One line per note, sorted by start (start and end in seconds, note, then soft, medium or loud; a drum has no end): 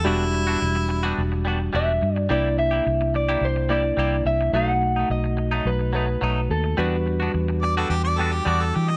0.05 0.55 E1 medium
0.05 2.26 G3 medium
0.05 0.23 G3 medium
0.05 0.23 B3 medium
0.05 2.26 D4 medium
0.05 0.23 D4 medium
0.05 1.15 E4 loud
0.05 2.26 F#4 medium
0.05 0.24 F#4 medium
0.33 muted clean electric guitar stroke soft
0.47 0.60 B3 soft
0.47 0.61 D4 medium
0.47 0.61 F#4 medium
0.61 1.11 E1 medium
0.61 muted clean electric guitar stroke soft
0.75 muted clean electric guitar stroke soft
0.89 muted clean electric guitar stroke soft
1.03 1.21 G3 medium
1.03 1.21 B3 medium
1.03 1.21 D4 medium
1.03 1.20 F#4 medium
1.18 1.68 E1 medium
1.32 muted clean electric guitar stroke soft
1.45 1.60 G3 medium
1.45 1.60 B3 medium
1.45 1.60 D4 medium
1.45 1.59 F#4 medium
1.60 muted clean electric guitar stroke soft
1.73 1.99 E1 medium
1.73 1.91 G3 medium
1.73 1.91 B3 medium
1.73 1.91 D4 medium
1.73 1.92 F#4 medium
1.73 2.16 E5 medium
2.02 2.27 G2 loud
2.02 muted clean electric guitar stroke soft
2.16 2.27 D5 medium
2.16 muted clean electric guitar stroke soft
2.29 2.80 C2 medium
2.29 2.47 G3 medium
2.29 3.67 A#3 medium
2.29 2.47 A#3 medium
2.29 3.67 D4 medium
2.29 3.67 E4 medium
2.29 2.48 E4 medium
2.29 2.48 G4 medium
2.29 2.57 D5 medium
2.58 3.15 E5 medium
2.58 muted clean electric guitar stroke soft
2.71 2.85 A#3 soft
2.71 2.86 E4 soft
2.71 2.85 G4 medium
2.86 3.36 C2 medium
2.86 muted clean electric guitar stroke soft
3.01 muted clean electric guitar stroke soft
3.14 3.44 D5 medium
3.14 muted clean electric guitar stroke soft
3.29 3.46 G3 medium
3.29 3.46 A#3 medium
3.29 3.45 E4 medium
3.29 3.45 G4 medium
3.41 3.91 C2 medium
3.41 3.72 C5 medium
3.56 muted clean electric guitar stroke soft
3.69 3.84 G3 medium
3.69 4.54 A#3 soft
3.69 3.84 A#3 medium
3.69 4.54 D4 soft
3.69 4.54 E4 medium
3.69 3.84 E4 medium
3.69 3.83 G4 medium
3.69 4.26 D5 medium
3.84 muted clean electric guitar stroke soft
3.97 4.22 C2 medium
3.97 4.15 G3 medium
3.97 4.15 A#3 medium
3.97 4.16 E4 medium
3.97 4.16 G4 medium
4.25 4.50 C2 loud
4.25 4.52 E5 loud
4.25 muted clean electric guitar stroke soft
4.41 muted clean electric guitar stroke soft
4.53 5.03 B1 loud
4.53 4.71 F#3 medium
4.53 6.74 A3 medium
4.53 4.72 A3 medium
4.53 6.74 D#4 medium
4.53 4.72 D#4 medium
4.53 6.74 F#4 medium
4.53 5.11 F#5 loud
4.82 muted clean electric guitar stroke soft
4.96 5.10 A3 soft
4.96 5.10 D#4 medium
5.10 5.59 B1 medium
5.10 5.68 D#5 medium
5.10 muted clean electric guitar stroke soft
5.24 muted clean electric guitar stroke medium
5.37 muted clean electric guitar stroke soft
5.51 5.70 F#3 medium
5.51 5.69 A3 medium
5.51 5.69 D#4 medium
5.65 6.15 B1 medium
5.65 5.93 B4 medium
5.79 muted clean electric guitar stroke soft
5.93 6.08 F#3 medium
5.93 6.08 A3 medium
5.93 6.07 D#4 medium
5.93 6.51 B4 medium
6.08 muted clean electric guitar stroke soft
6.21 6.47 B1 medium
6.21 6.39 F#3 medium
6.21 6.40 A3 medium
6.21 6.40 D#4 loud
6.50 6.75 D#2 loud
6.50 6.78 A4 medium
6.50 muted clean electric guitar stroke soft
6.64 muted clean electric guitar stroke soft
6.77 7.28 E2 loud
6.77 6.95 G3 medium
6.77 8.97 G3 medium
6.77 6.95 B3 medium
6.77 8.97 D4 medium
6.77 6.96 D4 medium
6.77 8.97 F#4 medium
6.77 6.96 F#4 medium
6.77 8.42 B4 medium
7.06 muted clean electric guitar stroke soft
7.20 7.33 B3 soft
7.20 7.33 D4 medium
7.20 7.34 F#4 medium
7.34 7.84 E2 medium
7.34 muted clean electric guitar stroke soft
7.48 muted clean electric guitar stroke soft
7.62 7.76 D5 medium
7.62 muted clean electric guitar stroke soft
7.77 7.94 G3 medium
7.77 7.94 B3 medium
7.77 7.94 D4 medium
7.77 7.93 F#4 medium
7.77 7.90 A4 medium
7.90 8.39 E2 medium
7.90 8.04 G4 medium
8.04 8.20 D5 loud
8.04 muted clean electric guitar stroke medium
8.18 8.33 G3 medium
8.18 8.33 B3 medium
8.18 8.32 D4 medium
8.18 8.32 F#4 medium
8.18 8.35 A4 medium
8.33 8.48 G4 medium
8.33 muted clean electric guitar stroke soft
8.45 8.71 E2 loud
8.45 8.63 G3 medium
8.45 8.63 B3 medium
8.45 8.64 D4 loud
8.45 8.64 F#4 loud
8.45 8.63 D5 medium
8.62 8.77 A4 medium
8.74 8.97 E3 loud
8.74 8.90 G4 medium
8.74 muted clean electric guitar stroke soft
8.88 8.97 D#5 medium
8.88 muted clean electric guitar stroke soft